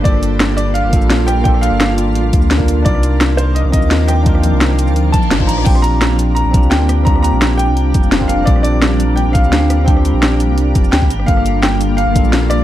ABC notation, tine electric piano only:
X:1
M:4/4
L:1/16
Q:1/4=171
K:Bb
V:1 name="Tine electric piano"
[B,DFA]8- [B,DFA]2 [B,DFA]6 | [B,DFA]8- [B,DFA]2 z3 [B,DFB]3 | [DEFB]8- [DEFB]2 [CEFB]6 | [DEFB]8- [DEFB]2 z3 [DEFc]3 |
[CDFG]8- [CDFG]2 [CDFG]6 | [CDFG]8- [CDFG]2 z3 [CDFB]3 | [CDFG]8- [CDFG]2 [CDFG]6 | [CDFG]8- [CDFG]2 z6 |
[B,DFA]8- [B,DFA]2 [B,DFA]6 |]